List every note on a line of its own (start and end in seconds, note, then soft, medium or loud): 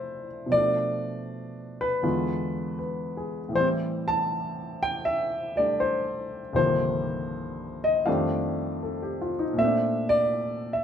0.00 0.52 F2 medium
0.00 0.48 F3 soft
0.00 0.52 A3 soft
0.00 0.52 C4 soft
0.00 0.52 D4 medium
0.00 0.53 E4 soft
0.00 0.26 C5 medium
0.00 0.52 D5 medium
0.00 0.54 E5 medium
0.46 2.00 B2 soft
0.46 2.02 F3 soft
0.52 2.04 A3 soft
0.52 1.84 D5 loud
0.57 2.06 D4 soft
1.81 2.77 B4 medium
2.03 3.54 E2 medium
2.03 3.54 D3 soft
2.03 3.54 G#3 soft
2.03 3.54 F4 medium
2.79 3.39 B4 soft
3.17 3.70 G#4 soft
3.49 6.53 A2 soft
3.53 6.55 E3 soft
3.53 5.54 G3 soft
3.53 3.67 C5 medium
3.60 6.59 C4 medium
4.08 4.85 A5 medium
4.83 5.04 G5 medium
5.05 5.59 E5 medium
5.56 6.55 G3 soft
5.56 6.56 A3 soft
5.56 6.57 D4 soft
5.56 5.81 D5 medium
5.80 6.40 C5 medium
6.53 8.05 C2 medium
6.53 8.06 G2 soft
6.53 8.05 D#3 soft
6.53 8.07 F3 soft
6.53 8.07 A#3 soft
6.53 7.79 C5 medium
6.58 8.08 D3 medium
7.84 8.08 D#5 medium
8.06 9.57 F2 medium
8.06 9.57 D#3 medium
8.06 9.58 G3 medium
8.06 9.55 A3 medium
8.06 9.58 D4 medium
8.06 9.30 F5 medium
8.83 9.19 A4 soft
9.02 9.35 G4 soft
9.21 9.44 F4 soft
9.39 9.65 D#4 medium
9.53 10.84 A#2 medium
9.53 10.84 A3 soft
9.59 10.84 C4 soft
9.59 10.12 E5 medium
9.64 10.84 D4 medium
10.09 10.77 D5 loud
10.73 10.84 E5 medium